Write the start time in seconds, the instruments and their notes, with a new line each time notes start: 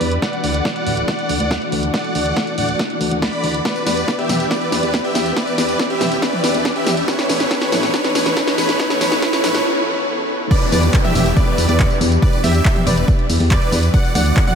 Already playing: analog synth pad E3 B3 D4 G4, supersaw synth B4 D5, riser
0.01 fm bass E2, open hi-hat
0.12 closed hi-hat
0.22 analog synth pad A3 F#4, supersaw synth D5 F#5, kick, snare, closed hi-hat
0.33 closed hi-hat
0.44 fm bass D2, supersaw synth D5 F#5, open hi-hat
0.54 closed hi-hat
0.65 kick, snare, closed hi-hat
0.76 supersaw synth D5 F#5, closed hi-hat
0.87 fm bass D1, open hi-hat
0.97 closed hi-hat
1.08 supersaw synth D5 F#5, kick, snare, closed hi-hat
1.19 closed hi-hat
1.29 fm bass D2, open hi-hat
1.40 fm bass D2, supersaw synth D5 F#5, closed hi-hat
1.51 kick, snare, closed hi-hat
1.62 closed hi-hat
1.72 fm bass D2, open hi-hat
1.83 closed hi-hat
1.94 supersaw synth D5 F#5, kick, snare, closed hi-hat
2.05 closed hi-hat
2.15 fm bass D2, supersaw synth D5 F#5, open hi-hat
2.26 closed hi-hat
2.37 kick, snare, closed hi-hat
2.47 closed hi-hat
2.58 fm bass D1, supersaw synth D5 F#5, open hi-hat
2.69 closed hi-hat
2.79 kick, snare, closed hi-hat
2.90 closed hi-hat
3.01 fm bass D2, open hi-hat
3.12 fm bass D2, closed hi-hat
3.22 supersaw synth D5 B5, kick, snare, closed hi-hat
3.33 closed hi-hat
3.44 fm bass D2, open hi-hat
3.54 closed hi-hat
3.65 analog synth pad B3 G4, supersaw synth B4 D5, kick, snare, closed hi-hat, tambourine
3.76 closed hi-hat, tambourine
3.86 fm bass E2, supersaw synth B4 D5, snare, open hi-hat, tambourine
3.97 closed hi-hat, tambourine
4.08 kick, snare, closed hi-hat, tambourine
4.19 supersaw synth G4 E5, closed hi-hat
4.29 fm bass E1, snare, open hi-hat, mid tom, tambourine
4.40 closed hi-hat, tambourine
4.51 supersaw synth B4 D5, kick, snare, closed hi-hat, tambourine
4.62 closed hi-hat
4.72 fm bass E2, supersaw synth B4 D5, snare, open hi-hat, tambourine
4.83 fm bass E2, closed hi-hat, tambourine
4.94 kick, snare, closed hi-hat, tambourine
5.04 supersaw synth G4 E5, closed hi-hat
5.15 fm bass E2, snare, open hi-hat, tambourine
5.26 closed hi-hat, tambourine
5.37 supersaw synth B4 D5, kick, snare, closed hi-hat, tambourine
5.47 closed hi-hat, tambourine
5.58 fm bass E2, supersaw synth B4 D5, snare, open hi-hat, tambourine
5.69 closed hi-hat, tambourine
5.79 kick, snare, closed hi-hat, tambourine
5.90 supersaw synth G4 E5, closed hi-hat
6.01 fm bass E1, snare, open hi-hat, mid tom, tambourine
6.12 closed hi-hat, tambourine
6.22 supersaw synth B4 D5, kick, snare, closed hi-hat, tambourine
6.33 closed hi-hat, mid tom
6.44 fm bass E2, supersaw synth B4 D5, snare, open hi-hat, tambourine
6.54 fm bass E2, closed hi-hat, tambourine
6.65 kick, snare, closed hi-hat, tambourine
6.76 supersaw synth G4 E5, closed hi-hat
6.86 fm bass E2, snare, open hi-hat, mid tom, tambourine
6.97 closed hi-hat, tambourine
7.08 analog synth pad E3 B3 C#4 A4, supersaw synth B4 C#5, kick, snare, closed hi-hat, tambourine
7.19 snare, closed hi-hat, tambourine
7.29 fm bass A1, supersaw synth B4 C#5, snare, open hi-hat, tambourine
7.40 snare, closed hi-hat, tambourine
7.51 supersaw synth B4 C#5, kick, snare, closed hi-hat, tambourine
7.62 snare, closed hi-hat
7.72 fm bass A2, supersaw synth B4 C#5, snare, open hi-hat, mid tom, tambourine
7.83 snare, closed hi-hat, tambourine
7.94 supersaw synth B4 C#5, kick, snare, closed hi-hat, tambourine
8.04 snare, closed hi-hat
8.15 fm bass A1, supersaw synth B4 C#5, snare, open hi-hat, tambourine
8.26 fm bass A1, snare, closed hi-hat, tambourine
8.37 supersaw synth B4 C#5, kick, snare, closed hi-hat, tambourine
8.47 snare, closed hi-hat
8.58 fm bass A1, supersaw synth B4 C#5, snare, open hi-hat, tambourine
8.69 snare, closed hi-hat, tambourine
8.79 supersaw synth B4 C#5, kick, snare, closed hi-hat, tambourine
8.90 snare, closed hi-hat, tambourine
9.01 fm bass A1, supersaw synth B4 C#5, snare, open hi-hat, mid tom, tambourine
9.12 snare, closed hi-hat, tambourine
9.22 supersaw synth B4 C#5, kick, snare, closed hi-hat, tambourine
9.33 snare, closed hi-hat, tambourine
9.44 fm bass A2, supersaw synth B4 C#5, snare, open hi-hat, mid tom, tambourine
9.55 snare, closed hi-hat, tambourine
10.51 analog synth pad E3 B3 D4 G4, supersaw synth B4 D5, synth pluck D5, kick, closed hi-hat, crash, tambourine, downlifter
10.62 closed hi-hat, tambourine
10.72 fm bass E2, supersaw synth B4 D5, synth pluck D5, open hi-hat, mid tom, tambourine
10.83 closed hi-hat, tambourine
10.94 kick, clap, closed hi-hat, tambourine
11.04 supersaw synth G4 E5, synth pluck E5, closed hi-hat, mid tom
11.15 fm bass E1, open hi-hat, mid tom, tambourine
11.26 closed hi-hat, tambourine
11.37 supersaw synth B4 D5, synth pluck D5, kick, closed hi-hat, tambourine
11.47 closed hi-hat
11.58 fm bass E2, open hi-hat, tambourine
11.69 fm bass E2, supersaw synth B4 D5, synth pluck D5, closed hi-hat, tambourine
11.80 kick, clap, closed hi-hat, tambourine
11.90 closed hi-hat, tambourine
12.01 fm bass E2, open hi-hat, tambourine
12.12 closed hi-hat, tambourine
12.22 supersaw synth B4 D5, synth pluck D5, kick, closed hi-hat, tambourine
12.33 closed hi-hat, tambourine
12.44 fm bass E2, supersaw synth G4 E5, synth pluck E5, open hi-hat, mid tom, tambourine
12.55 closed hi-hat, tambourine
12.65 kick, clap, closed hi-hat, tambourine
12.76 closed hi-hat, mid tom
12.87 fm bass E1, supersaw synth B4 D5, synth pluck D5, open hi-hat, mid tom, tambourine
12.97 closed hi-hat, tambourine
13.08 kick, closed hi-hat, tambourine
13.19 closed hi-hat
13.30 fm bass E2, open hi-hat, tambourine
13.40 fm bass E2, open hi-hat, tambourine
13.51 supersaw synth B4 D5, synth pluck D5, kick, clap, closed hi-hat, tambourine
13.62 closed hi-hat, tambourine
13.72 fm bass E2, open hi-hat, tambourine
13.83 closed hi-hat, tambourine
13.94 analog synth pad A3 D4 F#4, supersaw synth D5 F#5, synth pluck F#5, kick, closed hi-hat, tambourine
14.05 closed hi-hat, tambourine
14.15 fm bass D2, supersaw synth D5 F#5, synth pluck F#5, open hi-hat, mid tom, tambourine
14.26 closed hi-hat, tambourine
14.37 kick, clap, closed hi-hat, tambourine
14.47 supersaw synth D5 F#5, synth pluck F#5, closed hi-hat, mid tom